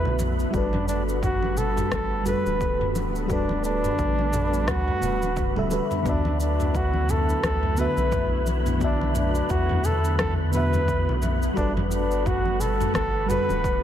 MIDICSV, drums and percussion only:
0, 0, Header, 1, 2, 480
1, 0, Start_track
1, 0, Tempo, 689655
1, 374, Time_signature, 4, 2, 24, 8
1, 9626, End_track
2, 0, Start_track
2, 0, Title_t, "Drums"
2, 36, Note_on_c, 9, 64, 87
2, 106, Note_off_c, 9, 64, 0
2, 131, Note_on_c, 9, 63, 85
2, 132, Note_on_c, 9, 45, 67
2, 133, Note_on_c, 9, 69, 74
2, 201, Note_off_c, 9, 63, 0
2, 202, Note_off_c, 9, 45, 0
2, 203, Note_off_c, 9, 69, 0
2, 274, Note_on_c, 9, 69, 41
2, 344, Note_off_c, 9, 69, 0
2, 373, Note_on_c, 9, 69, 34
2, 374, Note_on_c, 9, 36, 109
2, 443, Note_off_c, 9, 69, 0
2, 444, Note_off_c, 9, 36, 0
2, 508, Note_on_c, 9, 63, 84
2, 514, Note_on_c, 9, 45, 70
2, 577, Note_off_c, 9, 63, 0
2, 584, Note_off_c, 9, 45, 0
2, 615, Note_on_c, 9, 69, 73
2, 685, Note_off_c, 9, 69, 0
2, 757, Note_on_c, 9, 69, 44
2, 826, Note_off_c, 9, 69, 0
2, 854, Note_on_c, 9, 36, 100
2, 855, Note_on_c, 9, 45, 71
2, 856, Note_on_c, 9, 69, 34
2, 924, Note_off_c, 9, 36, 0
2, 924, Note_off_c, 9, 45, 0
2, 925, Note_off_c, 9, 69, 0
2, 991, Note_on_c, 9, 63, 66
2, 1061, Note_off_c, 9, 63, 0
2, 1092, Note_on_c, 9, 64, 79
2, 1094, Note_on_c, 9, 69, 81
2, 1161, Note_off_c, 9, 64, 0
2, 1164, Note_off_c, 9, 69, 0
2, 1234, Note_on_c, 9, 45, 75
2, 1235, Note_on_c, 9, 69, 46
2, 1304, Note_off_c, 9, 45, 0
2, 1305, Note_off_c, 9, 69, 0
2, 1332, Note_on_c, 9, 63, 80
2, 1333, Note_on_c, 9, 37, 73
2, 1335, Note_on_c, 9, 36, 101
2, 1335, Note_on_c, 9, 69, 32
2, 1402, Note_off_c, 9, 63, 0
2, 1403, Note_off_c, 9, 37, 0
2, 1404, Note_off_c, 9, 36, 0
2, 1404, Note_off_c, 9, 69, 0
2, 1571, Note_on_c, 9, 45, 73
2, 1573, Note_on_c, 9, 69, 80
2, 1641, Note_off_c, 9, 45, 0
2, 1642, Note_off_c, 9, 69, 0
2, 1714, Note_on_c, 9, 69, 42
2, 1715, Note_on_c, 9, 63, 62
2, 1783, Note_off_c, 9, 69, 0
2, 1785, Note_off_c, 9, 63, 0
2, 1815, Note_on_c, 9, 36, 97
2, 1815, Note_on_c, 9, 69, 31
2, 1884, Note_off_c, 9, 36, 0
2, 1885, Note_off_c, 9, 69, 0
2, 1956, Note_on_c, 9, 45, 70
2, 2026, Note_off_c, 9, 45, 0
2, 2055, Note_on_c, 9, 69, 68
2, 2056, Note_on_c, 9, 63, 93
2, 2125, Note_off_c, 9, 69, 0
2, 2126, Note_off_c, 9, 63, 0
2, 2196, Note_on_c, 9, 69, 41
2, 2265, Note_off_c, 9, 69, 0
2, 2293, Note_on_c, 9, 45, 71
2, 2295, Note_on_c, 9, 36, 96
2, 2295, Note_on_c, 9, 69, 33
2, 2363, Note_off_c, 9, 45, 0
2, 2364, Note_off_c, 9, 69, 0
2, 2365, Note_off_c, 9, 36, 0
2, 2430, Note_on_c, 9, 63, 77
2, 2500, Note_off_c, 9, 63, 0
2, 2534, Note_on_c, 9, 69, 76
2, 2603, Note_off_c, 9, 69, 0
2, 2674, Note_on_c, 9, 45, 70
2, 2675, Note_on_c, 9, 69, 43
2, 2743, Note_off_c, 9, 45, 0
2, 2744, Note_off_c, 9, 69, 0
2, 2773, Note_on_c, 9, 69, 33
2, 2776, Note_on_c, 9, 36, 105
2, 2843, Note_off_c, 9, 69, 0
2, 2845, Note_off_c, 9, 36, 0
2, 2914, Note_on_c, 9, 63, 64
2, 2984, Note_off_c, 9, 63, 0
2, 3014, Note_on_c, 9, 45, 74
2, 3015, Note_on_c, 9, 69, 75
2, 3020, Note_on_c, 9, 64, 76
2, 3084, Note_off_c, 9, 45, 0
2, 3085, Note_off_c, 9, 69, 0
2, 3089, Note_off_c, 9, 64, 0
2, 3157, Note_on_c, 9, 69, 43
2, 3227, Note_off_c, 9, 69, 0
2, 3253, Note_on_c, 9, 63, 87
2, 3255, Note_on_c, 9, 37, 72
2, 3256, Note_on_c, 9, 36, 102
2, 3256, Note_on_c, 9, 69, 31
2, 3322, Note_off_c, 9, 63, 0
2, 3325, Note_off_c, 9, 36, 0
2, 3325, Note_off_c, 9, 37, 0
2, 3326, Note_off_c, 9, 69, 0
2, 3394, Note_on_c, 9, 45, 70
2, 3464, Note_off_c, 9, 45, 0
2, 3492, Note_on_c, 9, 64, 75
2, 3497, Note_on_c, 9, 69, 80
2, 3561, Note_off_c, 9, 64, 0
2, 3567, Note_off_c, 9, 69, 0
2, 3635, Note_on_c, 9, 69, 43
2, 3636, Note_on_c, 9, 63, 61
2, 3705, Note_off_c, 9, 63, 0
2, 3705, Note_off_c, 9, 69, 0
2, 3733, Note_on_c, 9, 45, 65
2, 3734, Note_on_c, 9, 69, 33
2, 3736, Note_on_c, 9, 36, 109
2, 3802, Note_off_c, 9, 45, 0
2, 3803, Note_off_c, 9, 69, 0
2, 3806, Note_off_c, 9, 36, 0
2, 3872, Note_on_c, 9, 64, 76
2, 3941, Note_off_c, 9, 64, 0
2, 3973, Note_on_c, 9, 63, 77
2, 3973, Note_on_c, 9, 69, 75
2, 4042, Note_off_c, 9, 63, 0
2, 4043, Note_off_c, 9, 69, 0
2, 4113, Note_on_c, 9, 45, 65
2, 4114, Note_on_c, 9, 69, 41
2, 4182, Note_off_c, 9, 45, 0
2, 4183, Note_off_c, 9, 69, 0
2, 4214, Note_on_c, 9, 45, 75
2, 4215, Note_on_c, 9, 36, 102
2, 4215, Note_on_c, 9, 69, 33
2, 4284, Note_off_c, 9, 45, 0
2, 4285, Note_off_c, 9, 36, 0
2, 4285, Note_off_c, 9, 69, 0
2, 4350, Note_on_c, 9, 63, 84
2, 4420, Note_off_c, 9, 63, 0
2, 4456, Note_on_c, 9, 69, 80
2, 4525, Note_off_c, 9, 69, 0
2, 4593, Note_on_c, 9, 45, 70
2, 4594, Note_on_c, 9, 69, 41
2, 4662, Note_off_c, 9, 45, 0
2, 4663, Note_off_c, 9, 69, 0
2, 4695, Note_on_c, 9, 69, 31
2, 4696, Note_on_c, 9, 36, 97
2, 4765, Note_off_c, 9, 36, 0
2, 4765, Note_off_c, 9, 69, 0
2, 4827, Note_on_c, 9, 63, 62
2, 4896, Note_off_c, 9, 63, 0
2, 4935, Note_on_c, 9, 45, 76
2, 4935, Note_on_c, 9, 64, 65
2, 4936, Note_on_c, 9, 69, 76
2, 5004, Note_off_c, 9, 64, 0
2, 5005, Note_off_c, 9, 45, 0
2, 5006, Note_off_c, 9, 69, 0
2, 5075, Note_on_c, 9, 69, 45
2, 5144, Note_off_c, 9, 69, 0
2, 5175, Note_on_c, 9, 36, 96
2, 5175, Note_on_c, 9, 37, 70
2, 5175, Note_on_c, 9, 63, 88
2, 5176, Note_on_c, 9, 69, 31
2, 5244, Note_off_c, 9, 36, 0
2, 5244, Note_off_c, 9, 37, 0
2, 5244, Note_off_c, 9, 63, 0
2, 5245, Note_off_c, 9, 69, 0
2, 5310, Note_on_c, 9, 45, 69
2, 5380, Note_off_c, 9, 45, 0
2, 5408, Note_on_c, 9, 69, 82
2, 5477, Note_off_c, 9, 69, 0
2, 5549, Note_on_c, 9, 69, 43
2, 5555, Note_on_c, 9, 63, 57
2, 5618, Note_off_c, 9, 69, 0
2, 5624, Note_off_c, 9, 63, 0
2, 5649, Note_on_c, 9, 45, 72
2, 5650, Note_on_c, 9, 69, 32
2, 5654, Note_on_c, 9, 36, 99
2, 5719, Note_off_c, 9, 45, 0
2, 5720, Note_off_c, 9, 69, 0
2, 5723, Note_off_c, 9, 36, 0
2, 5891, Note_on_c, 9, 69, 69
2, 5894, Note_on_c, 9, 63, 87
2, 5960, Note_off_c, 9, 69, 0
2, 5963, Note_off_c, 9, 63, 0
2, 6027, Note_on_c, 9, 45, 67
2, 6028, Note_on_c, 9, 69, 41
2, 6097, Note_off_c, 9, 45, 0
2, 6098, Note_off_c, 9, 69, 0
2, 6130, Note_on_c, 9, 69, 33
2, 6133, Note_on_c, 9, 36, 95
2, 6199, Note_off_c, 9, 69, 0
2, 6203, Note_off_c, 9, 36, 0
2, 6274, Note_on_c, 9, 63, 76
2, 6344, Note_off_c, 9, 63, 0
2, 6368, Note_on_c, 9, 45, 75
2, 6369, Note_on_c, 9, 69, 75
2, 6438, Note_off_c, 9, 45, 0
2, 6439, Note_off_c, 9, 69, 0
2, 6507, Note_on_c, 9, 69, 43
2, 6576, Note_off_c, 9, 69, 0
2, 6607, Note_on_c, 9, 69, 30
2, 6613, Note_on_c, 9, 36, 97
2, 6677, Note_off_c, 9, 69, 0
2, 6683, Note_off_c, 9, 36, 0
2, 6747, Note_on_c, 9, 45, 75
2, 6757, Note_on_c, 9, 63, 56
2, 6816, Note_off_c, 9, 45, 0
2, 6827, Note_off_c, 9, 63, 0
2, 6850, Note_on_c, 9, 69, 77
2, 6860, Note_on_c, 9, 64, 70
2, 6920, Note_off_c, 9, 69, 0
2, 6929, Note_off_c, 9, 64, 0
2, 6991, Note_on_c, 9, 69, 44
2, 7061, Note_off_c, 9, 69, 0
2, 7091, Note_on_c, 9, 37, 70
2, 7091, Note_on_c, 9, 45, 73
2, 7092, Note_on_c, 9, 69, 30
2, 7094, Note_on_c, 9, 36, 94
2, 7099, Note_on_c, 9, 63, 90
2, 7161, Note_off_c, 9, 37, 0
2, 7161, Note_off_c, 9, 45, 0
2, 7162, Note_off_c, 9, 69, 0
2, 7163, Note_off_c, 9, 36, 0
2, 7169, Note_off_c, 9, 63, 0
2, 7328, Note_on_c, 9, 69, 73
2, 7340, Note_on_c, 9, 64, 80
2, 7398, Note_off_c, 9, 69, 0
2, 7410, Note_off_c, 9, 64, 0
2, 7470, Note_on_c, 9, 45, 72
2, 7471, Note_on_c, 9, 69, 41
2, 7479, Note_on_c, 9, 63, 62
2, 7540, Note_off_c, 9, 45, 0
2, 7541, Note_off_c, 9, 69, 0
2, 7548, Note_off_c, 9, 63, 0
2, 7573, Note_on_c, 9, 36, 96
2, 7574, Note_on_c, 9, 69, 32
2, 7643, Note_off_c, 9, 36, 0
2, 7644, Note_off_c, 9, 69, 0
2, 7719, Note_on_c, 9, 64, 81
2, 7789, Note_off_c, 9, 64, 0
2, 7810, Note_on_c, 9, 45, 69
2, 7811, Note_on_c, 9, 69, 67
2, 7818, Note_on_c, 9, 63, 77
2, 7880, Note_off_c, 9, 45, 0
2, 7881, Note_off_c, 9, 69, 0
2, 7888, Note_off_c, 9, 63, 0
2, 7951, Note_on_c, 9, 69, 40
2, 8021, Note_off_c, 9, 69, 0
2, 8053, Note_on_c, 9, 36, 101
2, 8053, Note_on_c, 9, 69, 28
2, 8122, Note_off_c, 9, 69, 0
2, 8123, Note_off_c, 9, 36, 0
2, 8192, Note_on_c, 9, 45, 74
2, 8193, Note_on_c, 9, 63, 82
2, 8261, Note_off_c, 9, 45, 0
2, 8263, Note_off_c, 9, 63, 0
2, 8291, Note_on_c, 9, 69, 72
2, 8361, Note_off_c, 9, 69, 0
2, 8430, Note_on_c, 9, 69, 41
2, 8499, Note_off_c, 9, 69, 0
2, 8534, Note_on_c, 9, 36, 92
2, 8534, Note_on_c, 9, 45, 75
2, 8535, Note_on_c, 9, 69, 29
2, 8603, Note_off_c, 9, 36, 0
2, 8604, Note_off_c, 9, 45, 0
2, 8605, Note_off_c, 9, 69, 0
2, 8668, Note_on_c, 9, 63, 59
2, 8738, Note_off_c, 9, 63, 0
2, 8774, Note_on_c, 9, 69, 74
2, 8776, Note_on_c, 9, 64, 69
2, 8844, Note_off_c, 9, 69, 0
2, 8845, Note_off_c, 9, 64, 0
2, 8913, Note_on_c, 9, 45, 81
2, 8914, Note_on_c, 9, 69, 42
2, 8983, Note_off_c, 9, 45, 0
2, 8984, Note_off_c, 9, 69, 0
2, 9005, Note_on_c, 9, 63, 81
2, 9013, Note_on_c, 9, 37, 72
2, 9014, Note_on_c, 9, 69, 32
2, 9015, Note_on_c, 9, 36, 99
2, 9075, Note_off_c, 9, 63, 0
2, 9082, Note_off_c, 9, 37, 0
2, 9083, Note_off_c, 9, 69, 0
2, 9084, Note_off_c, 9, 36, 0
2, 9255, Note_on_c, 9, 45, 83
2, 9256, Note_on_c, 9, 69, 75
2, 9325, Note_off_c, 9, 45, 0
2, 9326, Note_off_c, 9, 69, 0
2, 9390, Note_on_c, 9, 63, 62
2, 9395, Note_on_c, 9, 69, 40
2, 9459, Note_off_c, 9, 63, 0
2, 9464, Note_off_c, 9, 69, 0
2, 9494, Note_on_c, 9, 36, 103
2, 9497, Note_on_c, 9, 69, 31
2, 9564, Note_off_c, 9, 36, 0
2, 9567, Note_off_c, 9, 69, 0
2, 9626, End_track
0, 0, End_of_file